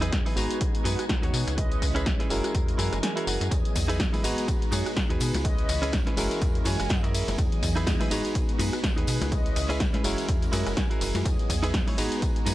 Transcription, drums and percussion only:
0.02 closed hi-hat, tambourine
0.12 kick, snare, closed hi-hat, tambourine
0.26 open hi-hat, tambourine
0.37 open hi-hat, tambourine
0.51 closed hi-hat, tambourine
0.61 kick, closed hi-hat, tambourine
0.75 closed hi-hat, tambourine
0.85 open hi-hat, tambourine
0.99 cross-stick, closed hi-hat, tambourine
1.09 kick, snare, closed hi-hat, tambourine
1.23 closed hi-hat, tambourine
1.34 open hi-hat, tambourine
1.48 closed hi-hat, tambourine
1.58 kick, closed hi-hat, tambourine
1.72 closed hi-hat, tambourine
1.82 kick, open hi-hat, tambourine
1.96 closed hi-hat, tambourine
2.06 kick, snare, closed hi-hat, tambourine
2.20 snare, closed hi-hat, tambourine
2.30 open hi-hat, tambourine
2.44 cross-stick, closed hi-hat, tambourine
2.55 kick, closed hi-hat, tambourine
2.68 closed hi-hat, tambourine
2.79 open hi-hat, tambourine
2.93 cross-stick, closed hi-hat, tambourine
3.03 snare, closed hi-hat, tambourine
3.17 closed hi-hat, tambourine
3.27 open hi-hat, tambourine
3.41 closed hi-hat, tambourine
3.51 kick, closed hi-hat, tambourine
3.65 closed hi-hat, tambourine
3.75 kick, open hi-hat, ride, tambourine
3.89 closed hi-hat, tambourine
4.00 kick, snare, closed hi-hat, tambourine
4.14 open hi-hat, tambourine, high conga
4.24 open hi-hat, ride, tambourine
4.38 closed hi-hat, tambourine
4.48 kick, closed hi-hat, tambourine
4.62 closed hi-hat, tambourine
4.72 open hi-hat, ride, tambourine, high conga
4.86 cross-stick, closed hi-hat, tambourine
4.96 kick, snare, closed hi-hat, tambourine
5.10 closed hi-hat, tambourine
5.20 open hi-hat, ride, tambourine
5.34 closed hi-hat, tambourine, high conga
5.45 kick, closed hi-hat, tambourine
5.58 closed hi-hat, tambourine
5.69 open hi-hat, ride, tambourine
5.83 closed hi-hat, tambourine
5.93 kick, snare, closed hi-hat, tambourine
6.07 snare, closed hi-hat, tambourine, high conga
6.17 open hi-hat, ride, tambourine
6.31 closed hi-hat, tambourine
6.42 kick, closed hi-hat, tambourine
6.55 closed hi-hat, tambourine
6.65 open hi-hat, ride, tambourine, high conga
6.79 cross-stick, closed hi-hat, tambourine
6.89 kick, snare, closed hi-hat, tambourine
6.91 tambourine
7.04 closed hi-hat, tambourine
7.15 open hi-hat, ride, tambourine
7.28 closed hi-hat, tambourine, high conga
7.38 kick, closed hi-hat, tambourine
7.52 closed hi-hat, tambourine
7.63 kick, open hi-hat, ride, tambourine
7.76 closed hi-hat, tambourine
7.87 kick, snare, closed hi-hat, tambourine
8.01 open hi-hat, tambourine, high conga
8.11 open hi-hat, ride, tambourine
8.25 closed hi-hat, tambourine
8.35 kick, closed hi-hat, tambourine
8.49 closed hi-hat, tambourine
8.59 open hi-hat, ride, tambourine, high conga
8.73 cross-stick, closed hi-hat, tambourine
8.84 kick, snare, closed hi-hat, tambourine
8.98 closed hi-hat, tambourine
9.07 open hi-hat, ride, tambourine
9.21 closed hi-hat, tambourine, high conga
9.32 kick, closed hi-hat, tambourine
9.46 closed hi-hat, tambourine
9.56 open hi-hat, ride, tambourine
9.70 closed hi-hat, tambourine
9.80 kick, snare, closed hi-hat, tambourine
9.94 snare, closed hi-hat, tambourine, high conga
10.04 open hi-hat, ride, tambourine
10.18 closed hi-hat, tambourine
10.28 kick, closed hi-hat, tambourine
10.42 closed hi-hat, tambourine
10.53 open hi-hat, ride, tambourine, high conga
10.66 cross-stick, closed hi-hat, tambourine
10.77 kick, snare, closed hi-hat, tambourine
10.91 closed hi-hat, tambourine
11.01 open hi-hat, ride, tambourine
11.15 closed hi-hat, tambourine, high conga
11.25 kick, closed hi-hat, tambourine
11.39 closed hi-hat, tambourine
11.50 kick, open hi-hat, ride, tambourine
11.63 closed hi-hat, tambourine
11.74 kick, snare, closed hi-hat, tambourine
11.88 open hi-hat, tambourine, high conga
11.98 open hi-hat, ride, tambourine
12.12 closed hi-hat, tambourine
12.22 kick, closed hi-hat, tambourine
12.36 closed hi-hat, tambourine
12.46 open hi-hat, ride, tambourine, high conga

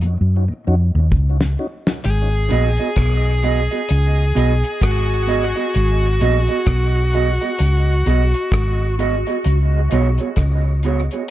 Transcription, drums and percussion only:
0.01 closed hi-hat
1.12 kick
1.41 snare
1.87 snare
2.04 closed hi-hat
2.50 closed hi-hat
2.77 closed hi-hat
2.96 kick, cross-stick, closed hi-hat
3.43 closed hi-hat
3.71 closed hi-hat
3.89 closed hi-hat
4.36 closed hi-hat
4.64 closed hi-hat
4.81 kick, cross-stick, closed hi-hat
5.28 closed hi-hat
5.56 closed hi-hat
5.74 closed hi-hat
6.21 closed hi-hat
6.47 closed hi-hat
6.66 kick, cross-stick, closed hi-hat
7.13 closed hi-hat
7.41 closed hi-hat
7.58 closed hi-hat
8.06 closed hi-hat
8.34 closed hi-hat
8.52 kick, cross-stick, closed hi-hat
8.99 closed hi-hat
9.27 closed hi-hat
9.44 closed hi-hat
9.91 closed hi-hat
10.18 closed hi-hat
10.36 kick, cross-stick, closed hi-hat
10.83 closed hi-hat
11.11 closed hi-hat

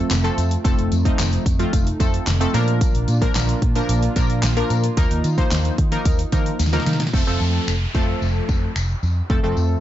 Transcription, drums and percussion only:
0.11 snare, clap, closed hi-hat, tambourine
0.25 closed hi-hat
0.38 closed hi-hat, tambourine
0.51 closed hi-hat
0.65 kick, closed hi-hat, tambourine
0.79 closed hi-hat
0.92 closed hi-hat, tambourine
1.05 kick, closed hi-hat
1.19 snare, clap, closed hi-hat, tambourine
1.33 closed hi-hat
1.46 kick, closed hi-hat, tambourine
1.60 closed hi-hat
1.73 kick, closed hi-hat, tambourine
1.87 closed hi-hat
2.00 kick, closed hi-hat, tambourine
2.14 closed hi-hat
2.27 snare, clap, closed hi-hat, tambourine
2.41 closed hi-hat
2.54 closed hi-hat, tambourine
2.68 closed hi-hat
2.81 kick, closed hi-hat, tambourine
2.95 closed hi-hat
3.08 closed hi-hat, tambourine
3.22 kick, closed hi-hat
3.35 snare, clap, closed hi-hat, tambourine
3.49 closed hi-hat
3.62 kick, closed hi-hat
3.75 closed hi-hat
3.89 closed hi-hat, tambourine
4.03 closed hi-hat
4.16 kick, closed hi-hat, tambourine
4.30 closed hi-hat
4.43 snare, clap, closed hi-hat, tambourine
4.57 closed hi-hat
4.70 closed hi-hat, tambourine
4.84 closed hi-hat
4.97 kick, closed hi-hat, tambourine
5.11 closed hi-hat
5.24 closed hi-hat, tambourine
5.38 kick, closed hi-hat
5.51 snare, clap, closed hi-hat, tambourine
5.65 closed hi-hat
5.78 kick, closed hi-hat
5.92 closed hi-hat
6.05 kick, closed hi-hat, tambourine
6.19 closed hi-hat
6.32 kick, closed hi-hat, tambourine
6.46 closed hi-hat
6.59 snare, closed hi-hat, tambourine
6.66 snare
6.73 snare, closed hi-hat
6.80 snare
6.86 snare, closed hi-hat, tambourine
6.93 snare
7.00 snare, closed hi-hat
7.07 snare
7.14 kick, tambourine
7.41 tambourine
7.68 finger snap, tambourine
7.95 kick, tambourine
8.22 tambourine
8.49 kick, tambourine
8.76 finger snap, tambourine
9.03 tambourine
9.30 kick
9.57 tambourine

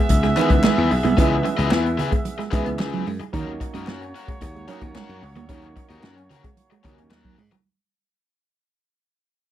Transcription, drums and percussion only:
0.09 kick, closed hi-hat, muted conga
0.23 snare, closed hi-hat
0.36 clap, closed hi-hat
0.50 kick, closed hi-hat
0.64 snare, clap, high conga
0.91 open hi-hat
1.05 closed hi-hat, high conga
1.18 kick, closed hi-hat
1.45 closed hi-hat, muted conga
1.58 closed hi-hat
1.71 snare, clap, high conga
1.86 closed hi-hat
1.99 closed hi-hat, low conga
2.12 kick, closed hi-hat
2.25 closed hi-hat, muted conga
2.40 snare, closed hi-hat
2.52 kick, clap, closed hi-hat, low conga
2.66 closed hi-hat
2.79 snare, clap, high conga
2.93 closed hi-hat
3.07 open hi-hat
3.20 closed hi-hat, high conga
3.33 kick, closed hi-hat, muted conga
3.61 kick, closed hi-hat, muted conga
3.75 closed hi-hat
3.87 snare, clap, high conga
4.02 closed hi-hat
4.15 closed hi-hat
4.28 kick, closed hi-hat
4.41 kick, closed hi-hat, muted conga
4.56 closed hi-hat
4.68 clap, closed hi-hat
4.81 kick, closed hi-hat
4.95 snare, clap, high conga
5.09 closed hi-hat
5.23 open hi-hat
5.36 closed hi-hat, high conga
5.49 kick, closed hi-hat, muted conga
5.62 closed hi-hat
5.76 kick, closed hi-hat, muted conga
5.90 closed hi-hat
6.03 snare, clap, high conga
6.17 closed hi-hat
6.30 closed hi-hat, low conga
6.44 kick, closed hi-hat
6.57 closed hi-hat, muted conga
6.72 closed hi-hat
6.85 kick, clap, closed hi-hat, low conga
6.98 closed hi-hat
7.11 snare, clap, high conga
7.25 kick
7.38 open hi-hat
7.52 closed hi-hat, high conga

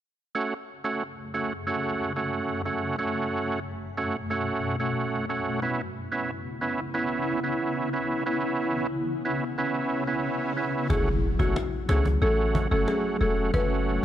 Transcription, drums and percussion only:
10.90 cajon bass
11.40 cajon bass
11.56 cajon slap
11.89 cajon slap
12.05 cajon bass
12.55 cajon bass, cajon slap
12.88 cajon slap
13.54 cajon bass

